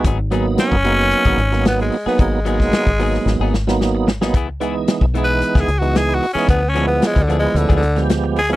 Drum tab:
HH |x-x-x-x-xxxxxxo-|x-x-xxo---------|x-x-x-x-xxxxxxo-|x-x-xxx-xxxxx-ox|
SD |----o--o---oo--o|---oo--oo-ooo-oo|----o----o--o--o|----o------oo---|
BD |o----o---o------|o--o-o----------|o----o---o------|o----o---o------|